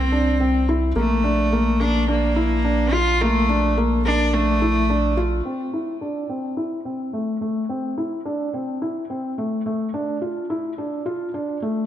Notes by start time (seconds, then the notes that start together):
Already playing: C2 C4
0.12 D4
0.40 C4
0.69 E4
0.96 A#1 A3 A#3
1.24 D4
1.53 A#3
1.80 A#3 D4
2.08 A#3 D4
2.36 E4
2.65 D4
2.93 F4
3.21 A3 A#3
3.49 D4
3.77 A#3
4.05 A#3 D4
4.34 A3 D4
4.62 E4
4.90 D4
5.17 F4
5.45 C4
5.74 E4
6.01 D4
6.29 C4
6.57 E4
6.85 C4
7.13 A3
7.41 A3
7.69 C4
7.98 E4
8.25 D4
8.54 C4
8.82 E4
9.10 C4
9.38 A3
9.66 A3
9.94 D4
10.22 F4
10.50 E4
10.78 D4
11.06 F4
11.34 D4
11.62 A3